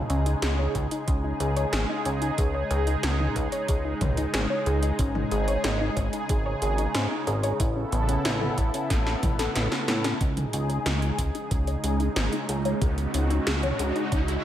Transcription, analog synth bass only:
0.10 0.35 C#2 medium
0.42 0.68 C#2 medium
0.75 0.88 C#2 loud
1.08 1.33 C#2 medium
1.40 1.66 C#2 medium
1.73 1.86 G#1 medium
2.06 2.31 C#2 medium
2.38 2.64 C#2 medium
2.71 2.96 C#2 medium
3.03 3.29 C#2 medium
3.36 3.49 C#2 loud
3.69 3.94 C#2 medium
4.01 4.27 C#2 medium
4.34 4.46 G#1 loud
4.66 4.92 C#2 medium
4.99 5.24 G#1 loud
5.32 5.57 G#1 medium
5.64 5.90 G#1 medium
5.97 6.09 G#1 loud
6.29 6.55 G#1 medium
6.62 6.87 G#1 medium
6.95 7.07 G#2 medium
7.27 7.53 G#1 medium
7.60 7.85 A1 loud
7.92 8.18 A1 medium
8.25 8.50 A1 medium
8.58 8.70 A1 medium
8.90 9.16 A1 medium
9.23 9.48 A1 medium
9.56 9.68 A1 medium
9.88 10.13 A2 medium
10.21 10.46 C#2 medium
10.53 10.79 C#2 medium
10.86 11.11 C#2 medium
11.19 11.31 C#2 loud
11.51 11.77 C#2 medium
11.84 12.09 C#2 medium
12.16 12.29 G#1 medium
12.49 12.74 C#2 medium
12.82 13.07 C#2 loud
13.14 13.40 C#2 medium
13.47 13.72 C#2 medium
13.79 13.92 C#2 medium
14.12 14.37 C#2 medium

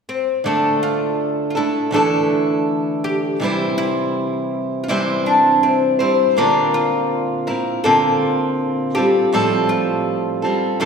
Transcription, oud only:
0.09 0.45 C4 medium
0.46 0.80 D4 medium
0.83 1.46 F4 medium
1.50 1.56 F4 soft
1.57 1.67 E4 medium
1.94 3.04 A4 medium
3.04 3.77 G4 medium
3.78 4.83 E4 medium
4.84 4.89 F4 medium
4.89 5.24 E4 medium
5.26 5.65 D4 medium
5.63 5.99 C4 medium
6.00 6.39 C4 medium
6.38 6.76 D4 medium
6.74 7.47 F4 medium
7.47 7.83 E4 medium
7.84 8.94 A4 medium
8.95 9.69 G4 medium
9.69 10.76 F4 medium
10.81 10.85 A4 medium

